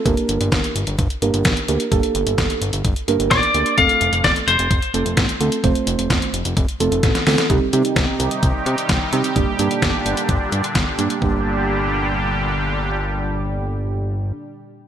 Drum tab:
HH |xxxxxxxxxxxxxxxx|xxxxxxxxxxxxxxxx|xxxxxxxxxxxxxxxx|xxxxxxxxxxxxxxox|
SD |----o-------o---|----o-------o---|----o-------o---|----o-------oooo|
BD |o---o---o---o---|o---o---o---o---|o---o---o---o---|o---o---o---o---|

HH |x-xxx-xxx-xxx-xx|x-xxx-xxx-xxx-xx|----------------|----------------|
SD |----o-------o---|----o-------o---|----------------|----------------|
BD |o---o---o---o---|o---o---o---o---|o---------------|----------------|